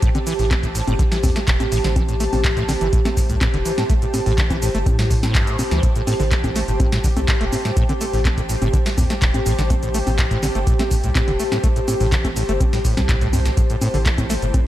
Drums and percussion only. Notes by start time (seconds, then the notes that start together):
0.02 kick, closed hi-hat, shaker
0.15 closed hi-hat, high conga, shaker
0.27 open hi-hat, shaker
0.39 open hi-hat, shaker
0.51 kick, clap, closed hi-hat, high conga, shaker
0.63 kick, closed hi-hat, shaker
0.75 open hi-hat, shaker
0.88 closed hi-hat, high conga, shaker
0.99 kick, closed hi-hat, shaker
1.12 snare, open hi-hat, shaker
1.23 kick, open hi-hat, high conga, shaker
1.36 snare, closed hi-hat, shaker
1.48 kick, clap, closed hi-hat, shaker
1.60 closed hi-hat, high conga, shaker
1.72 open hi-hat, shaker
1.84 snare, closed hi-hat, shaker
1.96 kick, closed hi-hat, high conga, shaker
2.09 closed hi-hat, shaker
2.20 open hi-hat, shaker
2.33 open hi-hat, high conga, shaker
2.44 kick, clap, closed hi-hat, shaker
2.57 kick, closed hi-hat, shaker
2.69 snare, open hi-hat, high conga, shaker
2.81 closed hi-hat, shaker
2.93 kick, closed hi-hat, shaker
3.05 snare, closed hi-hat, high conga, shaker
3.17 kick, open hi-hat, shaker
3.29 closed hi-hat, shaker
3.41 kick, clap, closed hi-hat, high conga, shaker
3.54 closed hi-hat
3.65 open hi-hat, shaker
3.78 snare, closed hi-hat, high conga, shaker
3.90 kick, closed hi-hat, shaker
4.02 closed hi-hat, shaker
4.14 open hi-hat, high conga, shaker
4.26 open hi-hat, shaker
4.38 kick, clap, closed hi-hat, shaker
4.50 kick, closed hi-hat, high conga, shaker
4.62 open hi-hat, shaker
4.75 closed hi-hat, shaker
4.86 kick, closed hi-hat, high conga, shaker
4.99 snare, open hi-hat, shaker
5.10 kick, open hi-hat, shaker
5.23 snare, closed hi-hat, high conga, shaker
5.35 kick, clap, closed hi-hat, shaker
5.47 closed hi-hat, shaker
5.59 open hi-hat, high conga, shaker
5.71 snare, closed hi-hat, shaker
5.83 kick, closed hi-hat, shaker
5.96 closed hi-hat, shaker
6.07 open hi-hat, high conga, shaker
6.20 open hi-hat, shaker
6.31 kick, clap, closed hi-hat, shaker
6.44 kick, closed hi-hat, high conga, shaker
6.56 snare, open hi-hat, shaker
6.68 closed hi-hat, shaker
6.80 kick, closed hi-hat, high conga, shaker
6.92 snare, closed hi-hat, shaker
7.04 kick, open hi-hat, shaker
7.17 closed hi-hat, high conga, shaker
7.28 kick, clap, closed hi-hat, shaker
7.41 closed hi-hat
7.53 open hi-hat, high conga, shaker
7.65 snare, closed hi-hat, shaker
7.77 kick, closed hi-hat, shaker
7.89 closed hi-hat, high conga, shaker
8.01 open hi-hat, shaker
8.13 open hi-hat, shaker
8.25 kick, clap, closed hi-hat, high conga, shaker
8.37 kick, closed hi-hat, shaker
8.49 open hi-hat, shaker
8.62 closed hi-hat, high conga, shaker
8.73 kick, closed hi-hat, shaker
8.86 snare, open hi-hat, shaker
8.98 kick, open hi-hat, high conga, shaker
9.10 snare, closed hi-hat, shaker
9.22 kick, clap, closed hi-hat, shaker
9.34 closed hi-hat, high conga, shaker
9.46 open hi-hat, shaker
9.59 snare, closed hi-hat, shaker
9.70 kick, closed hi-hat, high conga, shaker
9.83 closed hi-hat, shaker
9.94 open hi-hat, shaker
10.07 open hi-hat, high conga, shaker
10.19 kick, clap, closed hi-hat, shaker
10.31 kick, closed hi-hat, shaker
10.43 snare, open hi-hat, high conga, shaker
10.55 closed hi-hat, shaker
10.67 kick, closed hi-hat, shaker
10.79 snare, closed hi-hat, high conga, shaker
10.91 kick, open hi-hat, shaker
11.04 closed hi-hat, shaker
11.15 kick, clap, closed hi-hat, high conga, shaker
11.28 closed hi-hat
11.39 open hi-hat, shaker
11.52 snare, closed hi-hat, high conga, shaker
11.64 kick, closed hi-hat, shaker
11.76 closed hi-hat, shaker
11.88 open hi-hat, high conga, shaker
12.00 open hi-hat, shaker
12.12 kick, clap, closed hi-hat, shaker
12.24 kick, closed hi-hat, high conga, shaker
12.36 open hi-hat, shaker
12.49 closed hi-hat, shaker
12.60 kick, closed hi-hat, high conga, shaker
12.73 snare, open hi-hat, shaker
12.85 kick, open hi-hat, shaker
12.97 snare, closed hi-hat, high conga, shaker
13.09 kick, clap, closed hi-hat, shaker
13.21 closed hi-hat, shaker
13.33 open hi-hat, high conga, shaker
13.45 snare, closed hi-hat, shaker
13.57 kick, closed hi-hat, shaker
13.70 closed hi-hat, shaker
13.81 open hi-hat, high conga, shaker
13.94 open hi-hat, shaker
14.06 kick, clap, closed hi-hat, shaker
14.18 kick, closed hi-hat, high conga, shaker
14.30 snare, open hi-hat, shaker
14.42 closed hi-hat, shaker
14.54 kick, closed hi-hat, high conga, shaker